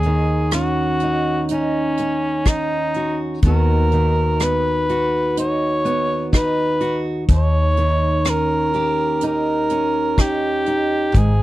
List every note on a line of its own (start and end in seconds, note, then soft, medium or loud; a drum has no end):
0.00 3.39 D#2 medium
0.00 3.43 D#2 medium
0.00 0.49 G#4 medium
0.00 closed hi-hat soft
0.06 3.44 D#3 medium
0.51 1.98 C#4 soft
0.51 1.46 F#4 medium
0.51 cross-stick medium
0.51 closed hi-hat medium
1.00 1.51 D#4 soft
1.00 closed hi-hat soft
1.49 2.48 D#4 medium
1.49 closed hi-hat medium
1.53 2.50 C#4 medium
1.97 3.38 C#4 medium
1.97 closed hi-hat soft
2.45 3.20 D#4 medium
2.45 3.46 D#4 soft
2.45 kick medium
2.45 cross-stick medium
2.45 closed hi-hat medium
2.94 3.38 F#4 medium
2.94 closed hi-hat soft
3.42 7.25 D#2 medium
3.42 7.28 D#2 medium
3.42 3.92 D#3 medium
3.42 4.40 B3 medium
3.42 kick medium
3.42 closed hi-hat medium
3.46 5.37 D#4 medium
3.46 4.89 F#4 medium
3.46 4.45 A#4 medium
3.92 7.77 D#3 medium
3.92 closed hi-hat soft
4.40 5.84 B3 medium
4.40 5.38 B4 medium
4.40 cross-stick medium
4.40 closed hi-hat medium
4.89 6.79 F#4 medium
4.89 closed hi-hat soft
5.37 6.32 D#4 medium
5.37 6.31 C#5 medium
5.37 closed hi-hat medium
5.85 7.23 B3 medium
5.85 closed hi-hat soft
6.33 8.29 D#4 medium
6.33 kick medium
6.33 cross-stick medium
6.33 closed hi-hat medium
6.37 7.03 B4 medium
6.80 7.23 F#4 medium
6.80 closed hi-hat soft
7.28 11.15 D#2 medium
7.28 11.11 D#2 medium
7.28 kick medium
7.28 closed hi-hat medium
7.34 8.31 C#5 loud
7.77 11.43 D#3 medium
7.77 closed hi-hat soft
8.25 9.70 C#4 soft
8.25 cross-stick medium
8.25 closed hi-hat medium
8.30 9.24 A#4 medium
8.73 11.10 G4 medium
8.73 closed hi-hat soft
9.21 10.18 D#4 medium
9.21 closed hi-hat medium
9.27 10.22 A#4 medium
9.69 11.10 C#4 medium
9.69 closed hi-hat soft
10.18 10.67 D#4 medium
10.18 11.20 G4 medium
10.18 kick medium
10.18 cross-stick medium
10.18 closed hi-hat medium
10.66 11.43 D#4 medium
10.66 closed hi-hat soft
11.15 11.43 G#1 medium
11.15 11.43 G#2 medium
11.15 11.43 G#4 medium
11.15 kick medium
11.15 closed hi-hat medium